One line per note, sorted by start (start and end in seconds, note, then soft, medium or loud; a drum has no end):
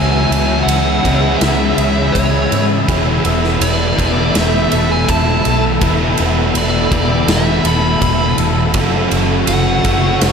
0.00 0.25 C#2 medium
0.00 1.01 C#3 medium
0.00 1.04 E3 medium
0.00 1.02 G#3 loud
0.00 0.66 B3 medium
0.00 1.03 C#4 medium
0.00 0.29 E4 medium
0.00 1.02 E4 loud
0.00 2.86 G#4 medium
0.00 2.84 C#5 medium
0.00 0.67 G#5 loud
0.00 8.73 B5 medium
0.00 8.72 E6 medium
0.29 0.62 C#2 medium
0.29 1.40 E4 medium
0.29 ride medium
0.63 0.98 C#2 medium
0.63 1.03 B3 medium
0.63 1.37 F#5 medium
0.68 ride medium
1.03 1.36 C#2 medium
1.03 2.86 C#3 medium
1.03 2.89 E3 medium
1.03 2.86 G#3 medium
1.03 3.23 B3 medium
1.03 2.86 C#4 medium
1.03 2.90 E4 medium
1.03 kick medium
1.03 ride medium
1.38 1.72 C#2 medium
1.38 2.14 E4 medium
1.38 2.15 E5 medium
1.38 ride medium
1.42 snare loud
1.78 2.09 C#2 medium
1.78 2.49 G#4 medium
1.78 ride medium
2.12 2.46 C#2 medium
2.12 4.36 E4 medium
2.12 2.65 C#5 medium
2.12 kick medium
2.12 ride medium
2.51 2.83 G#2 medium
2.51 2.88 G#4 medium
2.51 ride medium
2.87 3.19 E1 medium
2.87 3.99 E2 medium
2.87 3.96 B2 loud
2.87 3.60 E3 medium
2.87 3.98 E3 medium
2.87 3.98 A3 medium
2.87 3.98 B3 loud
2.87 3.97 E4 loud
2.87 10.32 A4 medium
2.87 8.72 E5 medium
2.87 kick medium
2.87 ride medium
3.24 3.56 E1 medium
3.24 3.98 B3 medium
3.24 ride medium
3.44 snare soft
3.61 3.92 E1 medium
3.61 5.81 E3 medium
3.61 4.37 D5 medium
3.61 ride medium
3.98 4.29 E1 medium
3.98 5.80 E2 medium
3.98 5.80 B2 medium
3.98 5.82 E3 medium
3.98 5.82 A3 medium
3.98 5.80 B3 medium
3.98 5.82 B3 medium
3.98 5.82 E4 medium
3.98 kick medium
3.98 ride medium
4.35 4.66 E1 medium
4.35 5.09 E4 medium
4.35 4.92 E5 medium
4.35 snare loud
4.35 ride medium
4.72 5.03 E1 medium
4.72 5.46 A4 medium
4.72 ride medium
4.92 5.09 G#5 medium
5.08 5.39 E1 medium
5.08 7.28 E4 medium
5.08 5.64 A5 medium
5.08 kick medium
5.08 ride medium
5.45 5.77 B1 medium
5.45 7.64 A4 medium
5.45 ride medium
5.81 6.12 E1 medium
5.81 6.89 E2 medium
5.81 6.90 B2 medium
5.81 6.55 E3 medium
5.81 6.91 E3 medium
5.81 6.91 A3 medium
5.81 6.89 B3 medium
5.81 6.90 E4 loud
5.81 kick loud
5.81 ride medium
6.18 6.50 E1 medium
6.18 6.91 B3 medium
6.18 ride medium
6.55 6.86 E1 medium
6.55 8.75 E3 medium
6.55 7.32 D5 medium
6.55 ride medium
6.90 7.22 E1 medium
6.90 8.74 E2 medium
6.90 8.74 B2 medium
6.90 8.75 E3 medium
6.90 8.73 A3 medium
6.90 8.73 B3 medium
6.90 8.76 B3 medium
6.90 8.76 E4 medium
6.90 kick medium
6.90 ride medium
7.27 7.59 E1 medium
7.27 8.01 E4 medium
7.27 7.68 E5 medium
7.27 snare loud
7.27 ride medium
7.64 7.96 E1 medium
7.64 8.38 A4 medium
7.64 8.36 B5 medium
7.64 ride medium
8.02 8.33 E1 medium
8.02 10.21 E4 medium
8.02 kick medium
8.02 ride medium
8.38 8.74 E1 medium
8.38 8.76 A4 medium
8.38 ride medium
8.74 9.06 F#1 medium
8.74 9.83 F#2 medium
8.74 9.83 C#3 medium
8.74 9.49 E3 medium
8.74 9.83 F#3 medium
8.74 9.83 A3 medium
8.74 9.84 C#4 loud
8.74 9.83 F#4 loud
8.74 10.32 F#5 medium
8.74 10.32 C#6 medium
8.74 10.32 E6 medium
8.74 kick medium
8.74 ride medium
9.11 9.43 F#1 medium
9.11 9.84 A3 medium
9.11 ride medium
9.47 9.79 F#1 medium
9.47 10.32 E3 medium
9.47 10.18 F#5 medium
9.47 ride medium
9.84 10.16 F#1 medium
9.84 10.32 F#2 medium
9.84 10.32 C#3 medium
9.84 10.32 F#3 medium
9.84 10.32 A3 medium
9.84 10.32 C#4 medium
9.84 10.32 F#4 medium
9.84 kick medium
9.84 ride medium
10.21 10.32 F#1 medium
10.21 10.32 C#4 medium
10.21 snare loud
10.21 ride medium